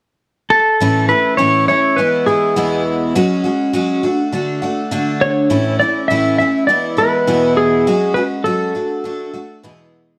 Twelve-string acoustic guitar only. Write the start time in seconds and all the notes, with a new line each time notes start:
0.80 A2 E3 A3 C#4 E4
1.08 A3 C#4 E4
1.38 A2 E3 A3 C#4 E4
1.68 A3 C#4 E4
1.98 E3 G#3 B3 E4
2.26 E3 G#3 B3 E4
2.56 E2 B2 E3 G#3 B3 E4
3.15 F#3 G#3 C#4 F#4
3.44 G#3 C#4 F#4
3.73 F#3 G#3 C#4 F#4
4.03 A3 D4 F#4
4.32 D3 A3 D4 F#4
4.62 A3 D4 F#4
4.91 D3 A3 D4 F#4
5.50 A2 E3 A3 C#4 E4
5.81 A3 C#4 E4
6.10 A2 E3 A3 C#4 E4
6.40 A3 C#4 E4
6.69 E3 G#3 B3 E4
6.97 E3 G#3 B3 E4
7.27 E2 B2 E3 G#3 B3 E4
7.87 F#3 G#3 C#4 F#4
8.16 G#3 C#4 F#4
8.45 F#3 G#3 C#4 F#4
8.75 A3 D4 F#4
9.04 D3 A3 D4 F#4
9.34 A3 D4 F#4
9.63 E2 B2 E3 G#3 B3 G#4